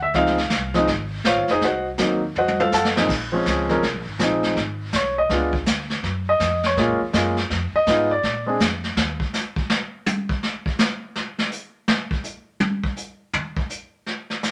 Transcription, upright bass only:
0.00 0.13 D2 medium
0.14 0.50 C#2 medium
0.50 0.86 C2 medium
0.87 1.23 G#1 medium
1.24 1.36 A#1 medium
1.36 1.48 G#1 medium
1.49 1.60 F1 medium
1.61 1.97 C2 medium
1.98 2.34 D#2 medium
2.35 2.71 F2 medium
2.72 3.08 F#2 medium
3.09 3.44 A#1 medium
3.46 3.81 C#2 medium
3.82 3.95 C2 medium
3.95 4.05 A#1 medium
4.06 4.18 G#1 medium
4.19 4.55 A#1 medium
4.56 4.91 G#1 medium
4.93 5.28 B1 medium
5.29 5.65 C#2 medium
5.66 6.02 D2 medium
6.03 6.39 F#2 medium
6.40 6.75 F2 medium
6.77 6.89 A#2 medium
6.88 7.00 F#2 medium
7.00 7.12 F2 medium
7.13 7.49 F#2 medium
7.50 7.72 F2 medium
7.73 muted upright bass stroke soft
7.87 8.22 G#2 medium
8.23 8.59 A#2 medium
8.59 8.95 F2 medium
8.96 9.19 D#2 medium

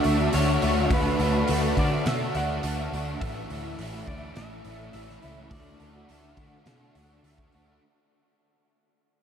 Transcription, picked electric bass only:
0.05 0.28 D2 medium
0.34 0.57 D2 medium
0.63 0.86 D2 medium
0.91 1.14 D2 medium
1.19 1.42 D2 medium
1.49 1.72 D2 medium
1.77 2.00 D3 medium
2.06 2.29 B2 medium
2.35 2.58 D2 medium
2.64 2.87 D2 medium
2.92 3.15 D2 medium
3.22 3.45 A1 medium
3.50 3.73 D2 medium
3.79 4.02 A1 medium
4.08 4.31 D2 medium
4.37 4.60 A1 medium
4.65 4.88 A1 medium
4.94 5.17 A1 loud
5.24 5.47 C#2 medium
5.51 5.74 D2 medium
5.80 6.04 D2 medium
6.09 6.33 D2 medium
6.37 6.61 D3 medium
6.66 6.90 B2 medium
6.95 7.19 D2 medium
7.24 7.47 D2 medium
7.55 7.78 D2 medium

